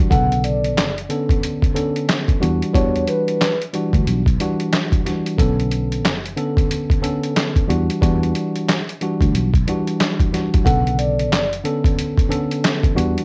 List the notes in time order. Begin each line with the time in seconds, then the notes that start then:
0.10 B1 C#3 D3 B3 A4 F#5, kick, closed hi-hat
0.32 closed hi-hat
0.44 D5, closed hi-hat
0.64 closed hi-hat
0.78 F#1, snare, clap, closed hi-hat
0.98 closed hi-hat
1.09 D3 B3 C#4 A4, closed hi-hat
1.29 kick, closed hi-hat
1.43 closed hi-hat
1.62 kick, closed hi-hat
1.74 D3 B3 C#4 A4, closed hi-hat
1.96 closed hi-hat
2.09 snare, clap, closed hi-hat
2.28 kick, closed hi-hat
2.40 E2 E3 G3 D4 F#4, closed hi-hat
2.62 closed hi-hat
2.73 E2 E3 G3 D4 F#4 C#5, kick, closed hi-hat
2.96 closed hi-hat
3.08 B4, closed hi-hat
3.28 closed hi-hat
3.41 snare, clap, closed hi-hat
3.62 closed hi-hat
3.73 E3 G3 D4 F#4, closed hi-hat
3.93 D2, kick, closed hi-hat
4.07 B1, closed hi-hat
4.26 kick, closed hi-hat
4.40 E3 G3 D4 F#4, closed hi-hat
4.60 closed hi-hat
4.73 snare, clap, closed hi-hat
4.92 kick, closed hi-hat
5.05 E3 G3 D4 F#4, snare, closed hi-hat
5.26 closed hi-hat
5.38 B1 D3 B3 C#4 A4, kick, closed hi-hat
5.59 closed hi-hat
5.71 closed hi-hat
5.92 closed hi-hat
6.05 F#1, snare, clap, closed hi-hat
6.25 closed hi-hat
6.37 D3 B3 C#4 A4, closed hi-hat
6.57 kick, closed hi-hat
6.71 closed hi-hat
6.90 kick, closed hi-hat
7.01 D3 B3 C#4 A4, closed hi-hat
7.23 closed hi-hat
7.36 snare, clap, closed hi-hat
7.56 kick, closed hi-hat
7.68 E2 E3 G3 D4 F#4, closed hi-hat
7.90 closed hi-hat
8.01 E2 E3 G3 D4 F#4, kick, closed hi-hat
8.23 closed hi-hat
8.35 closed hi-hat
8.56 closed hi-hat
8.69 snare, clap, closed hi-hat
8.89 closed hi-hat
9.01 E3 G3 D4 F#4, closed hi-hat
9.21 D2, kick, closed hi-hat
9.35 B1, closed hi-hat
9.54 kick, closed hi-hat
9.67 E3 G3 D4 F#4, closed hi-hat
9.87 closed hi-hat
10.00 snare, clap, closed hi-hat
10.20 kick, closed hi-hat
10.32 E3 G3 D4 F#4, snare, closed hi-hat
10.54 kick, closed hi-hat
10.65 B1 C#3 D3 B3 A4 F#5, kick, closed hi-hat
10.87 closed hi-hat
10.99 D5, closed hi-hat
11.19 closed hi-hat
11.32 F#1, snare, clap, closed hi-hat
11.53 closed hi-hat
11.64 D3 B3 C#4 A4, closed hi-hat
11.84 kick, closed hi-hat
11.99 closed hi-hat
12.18 kick, closed hi-hat
12.29 D3 B3 C#4 A4, closed hi-hat
12.51 closed hi-hat
12.64 snare, clap, closed hi-hat
12.83 kick, closed hi-hat
12.95 E2 E3 G3 D4 F#4, closed hi-hat
13.18 closed hi-hat